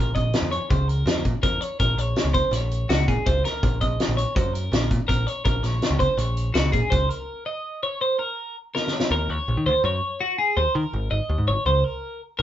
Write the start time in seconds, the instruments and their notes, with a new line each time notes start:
Already playing: picked electric bass A#1, clean electric guitar A#4
0.15 picked electric bass A#1, clean electric guitar D#5, kick, closed hi-hat
0.33 snare, closed hi-hat
0.42 picked electric bass F2
0.52 clean electric guitar C#5, closed hi-hat
0.70 picked electric bass C#2, clean electric guitar C5, kick, closed hi-hat
0.88 clean electric guitar A#4, closed hi-hat
1.06 picked electric bass F2, snare, closed hi-hat
1.25 picked electric bass A#2, kick, closed hi-hat
1.43 picked electric bass F2, clean electric guitar A#4, kick, closed hi-hat
1.61 clean electric guitar C#5, closed hi-hat
1.80 picked electric bass A#1, clean electric guitar A#4, kick, closed hi-hat
1.97 picked electric bass A#1, clean electric guitar C#5, closed hi-hat
2.16 snare, closed hi-hat
2.24 picked electric bass C#2
2.34 clean electric guitar C5, kick, closed hi-hat
2.51 picked electric bass A#1, clean electric guitar C#5, snare, closed hi-hat
2.71 closed hi-hat
2.89 picked electric bass C#2, clean electric guitar F#4, snare, closed hi-hat
3.08 picked electric bass A#2, clean electric guitar G#4, kick, closed hi-hat
3.26 picked electric bass C#2, clean electric guitar C5, kick, closed hi-hat
3.45 clean electric guitar A#4, snare, closed hi-hat
3.63 picked electric bass A#1, kick, closed hi-hat
3.81 picked electric bass A#1, clean electric guitar D#5, kick, closed hi-hat
4.00 snare, closed hi-hat
4.08 picked electric bass A#1
4.17 clean electric guitar C#5, closed hi-hat
4.35 picked electric bass F#2, clean electric guitar C5, kick, closed hi-hat
4.53 clean electric guitar A#4, closed hi-hat
4.72 picked electric bass A#1, snare, closed hi-hat
4.91 picked electric bass A#2, kick, closed hi-hat
5.08 picked electric bass A#1, clean electric guitar A#4, kick, closed hi-hat
5.27 clean electric guitar C#5, closed hi-hat
5.45 picked electric bass A#1, clean electric guitar A#4, kick, closed hi-hat
5.63 picked electric bass A#1, clean electric guitar C#5, snare, closed hi-hat
5.82 snare, closed hi-hat
5.90 picked electric bass C#2
5.99 clean electric guitar C5, kick, closed hi-hat
6.17 picked electric bass A#1, clean electric guitar C#5, closed hi-hat
6.37 closed hi-hat
6.54 picked electric bass C#2, clean electric guitar F#4, snare, closed hi-hat
6.72 picked electric bass A#2, clean electric guitar G#4, kick, closed hi-hat
6.90 picked electric bass C#2, clean electric guitar C5, kick, closed hi-hat
7.09 clean electric guitar A#4, closed hi-hat
7.46 clean electric guitar D#5
7.83 clean electric guitar C#5
8.01 clean electric guitar C5
8.19 clean electric guitar A#4
8.75 clean electric guitar A#4, snare
8.88 snare
8.93 clean electric guitar C#5
9.00 snare
9.11 picked electric bass D#2, clean electric guitar A#4
9.29 picked electric bass D#2, clean electric guitar C#5
9.48 picked electric bass A#1
9.57 picked electric bass D#3
9.66 picked electric bass D#2, clean electric guitar C5
9.84 picked electric bass F#2, clean electric guitar C#5
10.21 clean electric guitar F#4
10.38 clean electric guitar G#4
10.57 picked electric bass D#2, clean electric guitar C5
10.75 picked electric bass D#3, clean electric guitar A#4
10.93 picked electric bass G#1
11.11 picked electric bass G#1, clean electric guitar D#5
11.29 picked electric bass D#2
11.38 picked electric bass G#2
11.48 picked electric bass G#1, clean electric guitar C#5
11.66 picked electric bass C#2, clean electric guitar C5
11.84 clean electric guitar A#4
12.39 clean electric guitar A#4